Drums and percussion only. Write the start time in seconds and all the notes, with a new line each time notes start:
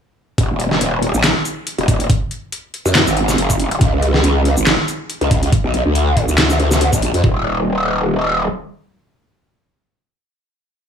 0.38 kick, closed hi-hat
0.60 closed hi-hat
0.71 snare
0.81 closed hi-hat
1.02 closed hi-hat
1.14 shaker
1.24 snare, clap, closed hi-hat
1.45 closed hi-hat, shaker
1.67 closed hi-hat
1.78 closed hi-hat
1.88 kick, open hi-hat
2.00 closed hi-hat
2.10 kick, closed hi-hat
2.31 closed hi-hat
2.52 closed hi-hat
2.74 closed hi-hat
2.86 shaker
2.95 snare, clap, closed hi-hat
3.07 shaker
3.17 closed hi-hat
3.28 snare, shaker
3.38 closed hi-hat
3.50 kick, closed hi-hat, shaker
3.60 open hi-hat
3.71 closed hi-hat
3.81 kick, closed hi-hat
4.02 closed hi-hat
4.14 snare
4.24 closed hi-hat
4.45 closed hi-hat
4.57 shaker
4.67 snare, clap, closed hi-hat
4.88 closed hi-hat, shaker
5.10 closed hi-hat
5.21 closed hi-hat
5.31 kick, open hi-hat
5.43 closed hi-hat
5.52 kick, closed hi-hat
5.74 closed hi-hat
5.95 closed hi-hat
6.17 kick, closed hi-hat
6.28 shaker
6.38 snare, clap, closed hi-hat
6.50 shaker
6.60 closed hi-hat
6.71 snare, shaker
6.81 closed hi-hat
6.93 kick, closed hi-hat, shaker
7.02 open hi-hat
7.14 closed hi-hat
7.24 kick